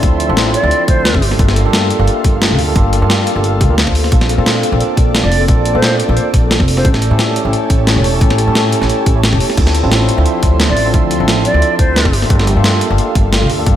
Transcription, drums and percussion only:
0.03 kick loud
0.03 closed hi-hat medium
0.20 closed hi-hat medium
0.37 snare loud
0.37 closed hi-hat medium
0.54 closed hi-hat loud
0.71 closed hi-hat medium
0.88 kick loud
0.88 closed hi-hat medium
1.05 snare loud
1.05 closed hi-hat medium
1.14 kick medium
1.14 snare medium
1.22 open hi-hat medium
1.31 snare soft
1.39 kick loud
1.39 closed hi-hat medium
1.48 snare soft
1.48 snare medium
1.56 closed hi-hat medium
1.73 snare loud
1.73 closed hi-hat medium
1.90 closed hi-hat medium
2.08 closed hi-hat medium
2.24 kick loud
2.24 closed hi-hat medium
2.42 snare loud
2.42 closed hi-hat medium
2.59 open hi-hat medium
2.76 kick loud
2.76 closed hi-hat medium
2.93 closed hi-hat medium
3.10 snare loud
3.10 closed hi-hat medium
3.27 closed hi-hat medium
3.44 closed hi-hat medium
3.61 kick loud
3.61 closed hi-hat medium
3.78 snare loud
3.78 closed hi-hat medium
3.87 kick medium
3.87 snare soft
3.95 open hi-hat medium
4.04 snare soft
4.12 kick loud
4.12 closed hi-hat medium
4.21 snare soft
4.21 snare medium
4.29 closed hi-hat medium
4.46 snare loud
4.46 closed hi-hat medium
4.63 closed hi-hat medium
4.80 closed hi-hat medium
4.97 kick loud
4.97 closed hi-hat medium
5.15 snare loud
5.15 closed hi-hat medium
5.32 open hi-hat medium
5.48 kick loud
5.48 closed hi-hat medium
5.66 closed hi-hat medium
5.83 snare loud
5.83 closed hi-hat medium
6.00 closed hi-hat medium
6.17 closed hi-hat medium
6.34 kick loud
6.34 closed hi-hat loud
6.51 snare loud
6.51 closed hi-hat medium
6.60 kick medium
6.60 snare soft
6.68 open hi-hat medium
6.77 snare soft
6.85 kick loud
6.85 closed hi-hat medium
6.94 snare soft
6.94 snare medium
7.02 closed hi-hat medium
7.19 snare loud
7.19 closed hi-hat medium
7.36 closed hi-hat loud
7.53 closed hi-hat medium
7.70 kick loud
7.70 closed hi-hat loud
7.87 snare loud
7.87 closed hi-hat medium
8.04 open hi-hat medium
8.21 kick loud
8.21 closed hi-hat medium
8.30 snare medium
8.38 closed hi-hat loud
8.55 snare loud
8.55 closed hi-hat medium
8.72 closed hi-hat loud
8.82 snare soft
8.90 closed hi-hat medium
9.06 kick loud
9.06 closed hi-hat loud
9.24 snare loud
9.24 closed hi-hat medium
9.33 snare soft
9.40 open hi-hat medium
9.50 snare soft
9.57 kick loud
9.57 closed hi-hat medium
9.57 crash medium
9.67 snare soft
9.67 snare medium
9.75 closed hi-hat loud
9.92 snare loud
9.92 closed hi-hat medium
10.09 closed hi-hat loud
10.26 closed hi-hat medium
10.43 kick loud
10.43 closed hi-hat loud
10.60 snare loud
10.60 closed hi-hat medium
10.77 open hi-hat medium
10.94 kick loud
10.94 closed hi-hat medium
11.11 closed hi-hat medium
11.28 snare loud
11.28 closed hi-hat medium
11.45 closed hi-hat loud
11.62 closed hi-hat medium
11.79 kick loud
11.79 closed hi-hat medium
11.96 snare loud
11.96 closed hi-hat medium
12.05 kick medium
12.05 snare soft
12.13 open hi-hat medium
12.22 snare soft
12.30 kick loud
12.30 closed hi-hat medium
12.39 snare soft
12.39 snare medium
12.47 closed hi-hat medium
12.64 snare loud
12.64 closed hi-hat medium
12.81 closed hi-hat medium
12.98 closed hi-hat medium
13.15 kick loud
13.15 closed hi-hat loud
13.33 snare loud
13.33 closed hi-hat medium
13.50 open hi-hat medium
13.66 kick loud
13.66 closed hi-hat medium

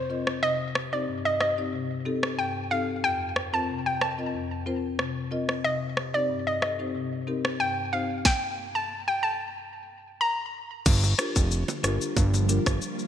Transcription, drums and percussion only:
0.27 cross-stick medium
0.75 cross-stick loud
1.40 cross-stick medium
2.23 cross-stick loud
3.36 cross-stick medium
4.01 cross-stick medium
4.99 cross-stick medium
5.49 cross-stick medium
5.97 cross-stick medium
6.62 cross-stick medium
7.45 cross-stick loud
8.25 kick loud
8.25 snare medium
10.86 kick loud
10.86 crash medium
10.86 shaker medium
11.03 high bongo soft
11.03 shaker soft
11.19 cross-stick loud
11.19 closed hi-hat medium
11.19 shaker soft
11.36 kick medium
11.36 shaker medium
11.51 shaker medium
11.68 high bongo medium
11.68 shaker soft
11.84 cross-stick medium
11.84 closed hi-hat medium
11.84 shaker medium
12.01 shaker medium
12.17 kick medium
12.17 high bongo medium
12.17 shaker medium
12.34 high bongo medium
12.34 shaker medium
12.49 closed hi-hat medium
12.49 shaker soft
12.66 kick medium
12.66 cross-stick medium
12.66 shaker medium
12.82 shaker medium
12.99 shaker soft

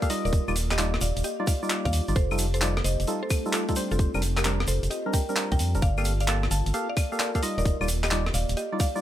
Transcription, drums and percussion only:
0.02 kick medium
0.02 closed hi-hat medium
0.02 shaker soft
0.10 open hi-hat loud
0.10 shaker medium
0.25 closed hi-hat soft
0.25 shaker soft
0.33 kick loud
0.33 closed hi-hat medium
0.33 shaker medium
0.48 claves medium
0.48 shaker soft
0.56 open hi-hat loud
0.56 shaker medium
0.71 cross-stick medium
0.71 clap medium
0.71 closed hi-hat medium
0.71 claves medium
0.71 shaker soft
0.78 clap loud
0.78 shaker medium
0.94 cross-stick medium
0.94 closed hi-hat soft
1.01 open hi-hat medium
1.01 shaker medium
1.17 closed hi-hat medium
1.17 shaker soft
1.24 closed hi-hat medium
1.24 shaker medium
1.47 kick loud
1.47 open hi-hat loud
1.47 shaker loud
1.63 shaker soft
1.70 clap loud
1.70 shaker medium
1.85 kick medium
1.85 closed hi-hat medium
1.85 shaker soft
1.93 open hi-hat loud
1.93 shaker loud
2.08 closed hi-hat soft
2.08 shaker soft
2.16 kick loud
2.16 closed hi-hat medium
2.16 shaker medium
2.31 claves medium
2.31 shaker soft
2.38 open hi-hat loud
2.38 shaker medium
2.54 closed hi-hat medium
2.54 shaker soft
2.61 clap loud
2.61 shaker medium
2.77 cross-stick medium
2.77 closed hi-hat soft
2.84 open hi-hat medium
2.84 shaker medium
3.00 closed hi-hat medium
3.00 shaker soft
3.07 closed hi-hat medium
3.07 shaker medium
3.30 kick loud
3.30 open hi-hat loud
3.30 claves medium
3.30 shaker loud
3.46 shaker soft
3.53 clap loud
3.53 shaker medium
3.69 kick medium
3.69 closed hi-hat soft
3.69 shaker soft
3.76 open hi-hat medium
3.76 shaker loud
3.91 closed hi-hat soft
3.91 shaker soft
3.99 kick loud
3.99 closed hi-hat medium
3.99 shaker medium
4.14 claves medium
4.14 shaker soft
4.22 open hi-hat loud
4.22 shaker medium
4.37 cross-stick medium
4.37 clap medium
4.37 closed hi-hat medium
4.37 claves medium
4.37 shaker soft
4.45 clap loud
4.45 shaker medium
4.60 cross-stick medium
4.60 closed hi-hat soft
4.67 open hi-hat medium
4.67 shaker loud
4.83 closed hi-hat medium
4.83 shaker soft
4.91 closed hi-hat medium
4.91 shaker medium
5.14 kick loud
5.14 open hi-hat loud
5.14 shaker loud
5.29 shaker soft
5.36 clap loud
5.36 shaker soft
5.52 kick medium
5.52 closed hi-hat soft
5.52 shaker soft
5.59 open hi-hat medium
5.59 shaker medium
5.75 closed hi-hat soft
5.75 shaker soft
5.82 kick loud
5.82 closed hi-hat medium
5.82 shaker medium
5.98 claves medium
5.98 shaker soft
6.05 open hi-hat loud
6.05 shaker medium
6.20 closed hi-hat medium
6.20 shaker soft
6.28 clap loud
6.28 shaker medium
6.43 cross-stick medium
6.43 closed hi-hat soft
6.51 open hi-hat medium
6.51 shaker medium
6.66 closed hi-hat medium
6.66 shaker soft
6.74 closed hi-hat medium
6.74 shaker medium
6.97 kick loud
6.97 open hi-hat loud
6.97 claves medium
6.97 shaker medium
7.12 shaker soft
7.20 clap loud
7.20 shaker soft
7.35 kick medium
7.35 closed hi-hat medium
7.35 shaker soft
7.43 open hi-hat medium
7.43 shaker medium
7.58 closed hi-hat soft
7.58 shaker soft
7.65 kick loud
7.65 closed hi-hat medium
7.65 shaker medium
7.81 claves medium
7.81 shaker soft
7.88 open hi-hat loud
7.88 shaker medium
8.04 cross-stick soft
8.04 clap medium
8.04 closed hi-hat medium
8.04 claves medium
8.04 shaker soft
8.11 clap loud
8.11 shaker medium
8.26 cross-stick medium
8.26 closed hi-hat soft
8.34 open hi-hat medium
8.34 shaker medium
8.49 closed hi-hat medium
8.49 shaker soft
8.57 closed hi-hat medium
8.57 shaker soft
8.80 kick loud
8.80 open hi-hat loud
8.80 shaker medium
8.96 shaker soft

